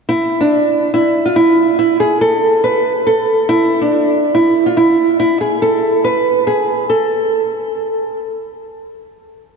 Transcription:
nylon-string guitar
0.09 E4
0.41 D4
0.94 E4
1.26 F4
1.36 E4
1.79 E4
2.00 G#4
2.21 A4
2.64 B4
3.07 A4
3.49 E4
3.81 D4
4.35 E4
4.66 F4
4.77 E4
5.20 E4
5.41 G#4
5.62 A4
6.04 B4
6.47 G#4
6.90 A4

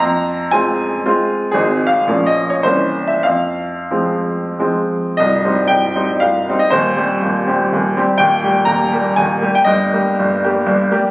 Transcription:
grand piano
0.00 F2 A#5
0.51 G#3 C4 F4 G#5
1.05 G#3 C4 F4
1.51 G#1 G#3 C4 D#4 G#4
1.87 F5
2.07 A#1 F3 A#3 C#4
2.26 D#5
2.50 C#5
2.63 C2 E3 A#3 C#4 C5
3.08 E5
3.23 F2 F5
3.91 F3 G#3 C4
4.59 F3 G#3 C4
5.17 C1 C2 D#5
5.44 G3 C4 D#4
5.67 C1 C2 G5
5.95 G3 C4 D#4
6.20 C1 C2 F5
6.49 G3 C4 D#4
6.59 D#5
6.70 D#1 D#2 C5
6.95 G3 C4 G4
7.22 D#1 D#2
7.47 G3 C4 G4
7.72 D#1 D#2
7.97 G3 C4 G4
8.18 D#1 D#2 G5
8.43 G3 A#3 G4
8.65 D#1 D#2 A#5
8.92 G3 A#3 G4
9.16 D#1 D#2 G#5
9.41 G3 A#3 G4
9.55 G5
9.64 G1 G2 D#5
9.93 G3 A#3 G4
10.19 G1 G2
10.44 G3 A#3 G4
10.66 G1 G2
10.91 G3 A#3 G4

